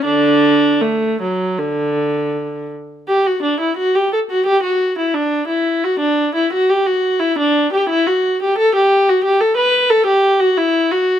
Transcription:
X:1
M:4/4
L:1/16
Q:1/4=87
K:D
V:1 name="Viola"
[D,D]4 A,2 F,2 D,6 z2 | [K:G] G F D E F G A F G F2 E D2 E2 | F D2 E F G F2 E D2 G E F2 G | A G2 F G A B2 A G2 F E2 F2 |]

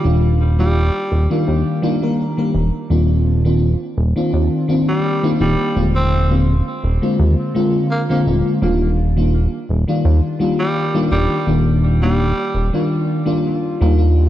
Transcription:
X:1
M:4/4
L:1/16
Q:"Swing 16ths" 1/4=84
K:Eb
V:1 name="FM electric piano"
[E,G,B,DF]3 [E,G,B,DF] z3 [E,G,B,DF]3 [E,G,B,DF] [E,G,B,DB] z [E,G,B,DB] z2 | [E,B,CDF]3 [E,B,CDF] z3 [E,B,CDF]3 [E,B,CDF]3 [E,B,CDF] [E,B,CDF]2 | [D,A,B,CF]3 [D,A,B,CF] z3 [D,A,B,CF]3 [D,A,B,CF]3 [D,A,B,CF] [D,A,B,CF]2 | [E,G,B,DF]3 [E,G,B,DF] z3 [E,G,B,DF]3 [E,G,B,DF]3 [E,G,B,DF] [E,G,B,DF]2 |
[E,G,B,DF]3 [E,G,B,DF] z3 [E,G,B,DF]3 [E,G,B,DF]3 [E,G,B,DF] [E,G,B,DF]2 |]
V:2 name="Tenor saxophone" clef=bass
z3 G,4 z8 z | z8 z3 G,2 z G,2 | z C2 z8 z B, B, z2 | z8 z3 G,2 z G,2 |
z3 G,4 z8 z |]
V:3 name="Analog synth bass" clef=bass
E,,,4- E,,, z E,,, z E,, z4 z E,,, z | E,,,4- E,,, z E,,, z E,, z4 z E,,, z | E,,,4- E,,, z E,,, z E,, z4 z E,,, z | E,,,4- E,,, z E,,, z E,, z4 z E,,, z |
E,,,4- E,,, z E,,, z6 E,,3 |]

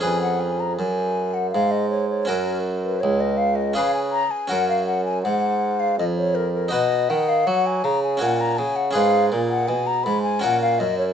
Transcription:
X:1
M:3/4
L:1/16
Q:1/4=81
K:F#
V:1 name="Flute"
g f g a g3 f e d c c | A3 B c d e d e g a g | f e f g f3 e d c A A | d2 f e f g a g f a g f |
e3 f g a b g f e d c |]
V:2 name="Harpsichord"
[CGB]12 | [CFA]8 [CGB]4 | [CFA]12 | [DFB]8 [CFc]4 |
[CGB]8 [CFA]4 |]
V:3 name="Harpsichord" clef=bass
E,,4 F,,4 G,,4 | F,,4 C,,4 C,2 z2 | F,,4 G,,4 E,,4 | B,,2 D,2 F,2 C,2 A,,2 C,2 |
G,,2 A,,2 B,,2 G,,2 A,,2 F,,2 |]
V:4 name="Bassoon" clef=bass
E,,4 F,,4 G,,4 | F,,4 C,,4 C,2 z2 | F,,4 G,,4 E,,4 | B,,2 D,2 F,2 C,2 A,,2 C,2 |
G,,2 A,,2 B,,2 G,,2 A,,2 F,,2 |]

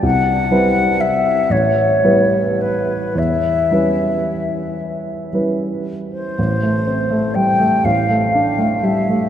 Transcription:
X:1
M:6/8
L:1/16
Q:3/8=40
K:Em
V:1 name="Flute"
f4 e2 ^c4 B2 | e6 z4 z c- | [K:Am] c4 g2 f4 e2 |]
V:2 name="Grand piano"
C,,2 [G,CEB]4 A,,,2 [G,B,EB]4 | E,,2 [G,^CEB]6 [G,CEB]4 | [K:Am] A,,, A, C A, G, A, A,,, A, D A, G, A, |]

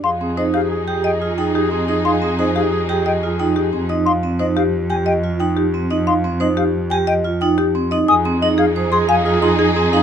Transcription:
X:1
M:6/4
L:1/8
Q:1/4=179
K:Fm
V:1 name="Flute"
c' z e f z2 g z4 z | c' z e f z2 g z4 z | c' z e f z a g z4 z | c' z e f z a g z4 z |
e' z e f z c' a z4 z |]
V:2 name="Marimba"
f z c G z g e z g G z e | f z c G z g e z g G z e | f z c G z g e z g G z e | f z c G z g e z g G z e |
a z e A z c' f z c' A z f |]
V:3 name="Clarinet"
A A A A A A A A A A A A | A A A A A A A A A A A z | z12 | z12 |
A A A A A A A A A A A A |]
V:4 name="String section"
[EA]12- | [EA]8- [EA]3 z | z12 | z12 |
[EA]12 |]
V:5 name="Vibraphone"
z C E z2 G z F E z C E | z C E z2 G z F E z C E | z C E z2 G z F E z C E | z C E z2 G z F E z C E |
z C E z c A z F E z C E |]
V:6 name="Cello" clef=bass
F,,12- | F,,12- | F,,12- | F,,12 |
F,,12 |]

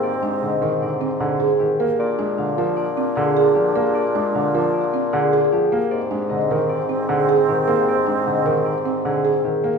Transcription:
X:1
M:5/4
L:1/8
Q:1/4=153
K:Ablyd
V:1 name="Harp"
[GAde]2 e2 d2 A2 G2 | d2 f2 d2 A2 G2 | d2 f2 d2 A2 G2 | d2 e2 d2 A2 G2 |
d2 e2 d2 A2 G2 |]
V:2 name="Marimba"
z D z B z C z A z B | z D z B z C z A z B | z D z B z C z A z B | z D z B z C z A z B |
z D z B z C z A z B |]
V:3 name="Alto flute"
C8- C z | D8- D2- | D8- D z | C8- C2- |
C8- C z |]
V:4 name="Grand piano" clef=bass
z A, D, E, D, z D, z E, B, | z A, D, F, z2 D, z F, B, | z A, D, F, z2 D, z F, B, | z A, D, E, z2 D, z E, B, |
z A, D, E, z2 D, z E, B, |]
V:5 name="Bassoon" clef=bass
A,,8- A,,2 | B,,8- B,,2- | B,,8- B,,2 | A,,8- A,,2- |
A,,8- A,,2 |]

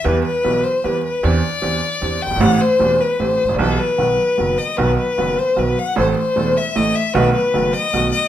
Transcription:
X:1
M:3/4
L:1/16
Q:1/4=152
K:Em
V:1 name="Violin"
B2 B4 c2 B2 B2 | d8- d2 g2 | f2 c4 B2 c4 | A2 B8 ^d2 |
B2 B4 c2 B2 f2 | c2 c4 e2 ^d2 e2 | B2 B4 ^d4 d2 |]
V:2 name="Grand piano" clef=bass
[E,,E,G,B,G]2 z2 [B,,,B,,E,G,B,G]2 z2 [E,,E,G,B,G]2 z2 | [E,,E,CDG]2 z2 [E,,E,CDG]2 z2 [E,,E,CDG]2 z/2 F,,,/2 G,,,/2 ^G,,,/2 | [A,,,A,,E,A,CG]2 z2 [E,,,E,,E,A,CG]2 z2 [A,,,A,,E,A,CG]2 z/2 ^G,,,/2 A,,,/2 ^A,,,/2 | [B,,,B,,E,G,B,G]2 z2 [B,,,B,,^D,F,B,F]2 z2 [F,,,F,,D,F,B,F]2 z2 |
[B,,,B,,^D,F,B,F]2 z2 [F,,,F,,D,F,B,F]2 z2 [B,,,B,,D,F,B,F]2 z2 | [A,,,A,,E,A,CA]2 z2 [E,,,E,,E,A,CA]2 z2 [A,,,A,,E,A,CA]2 z2 | [B,,,B,,^D,A,B,F]2 z2 [F,,,F,,D,A,B,F]2 z2 [B,,,B,,D,A,B,F]2 z2 |]
V:3 name="Upright bass" clef=bass
E,,3/2 z2 z/2 B,,,3/2 z2 z/2 E,,3/2 z2 z/2 | E,,3/2 z2 z/2 E,,3/2 z2 z/2 E,,3/2 z F,,,/2 G,,,/2 ^G,,,/2 | A,,,3/2 z2 z/2 E,,,3/2 z2 z/2 A,,,3/2 z ^G,,,/2 A,,,/2 ^A,,,/2 | B,,,3/2 z2 z/2 B,,,3/2 z2 z/2 F,,,3/2 z2 z/2 |
B,,,3/2 z2 z/2 F,,,3/2 z2 z/2 B,,,3/2 z2 z/2 | A,,,3/2 z2 z/2 E,,,3/2 z2 z/2 A,,,3/2 z2 z/2 | B,,,3/2 z2 z/2 F,,,3/2 z2 z/2 B,,,3/2 z2 z/2 |]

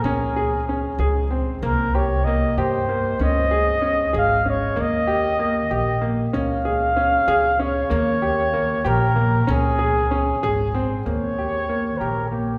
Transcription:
X:1
M:5/8
L:1/8
Q:1/4=95
K:Dblyd
V:1 name="Flugelhorn"
A4 z | B d e c2 | e3 f d | e3 e z |
f4 d- | d3 B2 | A4 z | d3 B G |]
V:2 name="Grand piano"
D A D A C | B, G B, G B, | D A D A D | B, G B, G B, |
D A D A D | B, G B, G B, | D A D A C | B, G B, G B, |]
V:3 name="Upright bass" clef=bass
D,,3 D,,2 | C,,3 G,,2 | D,,3 A,,,2 | E,,3 B,,,2 |
D,,3 D,,2 | E,,3 B,,,2 | D,,3 A,,,2 | E,,3 B,,,2 |]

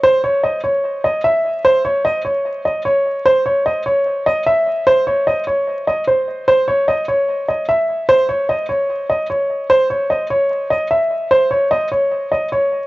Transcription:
X:1
M:4/4
L:1/8
Q:1/4=149
K:C#m
V:1 name="Grand piano"
^B c d c2 d e2 | ^B c d c2 d c2 | ^B c d c2 d e2 | ^B c d c2 d B2 |
^B c d c2 d e2 | ^B c d c2 d c2 | ^B c d c2 d e2 | ^B c d c2 d c2 |]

